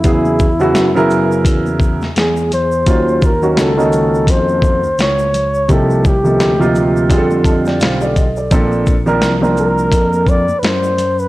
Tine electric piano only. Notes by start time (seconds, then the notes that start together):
0.04 E2
0.75 F#2
1.45 E2
2.02 E2
2.17 E2
2.87 D#2
3.58 C#2
4.28 F2
4.85 C#2
4.99 C#2
5.69 C2
6.40 D2
7.10 F2
7.82 B1
8.52 A#1
9.22 C2
9.92 F2
10.49 F#2
10.63 F#2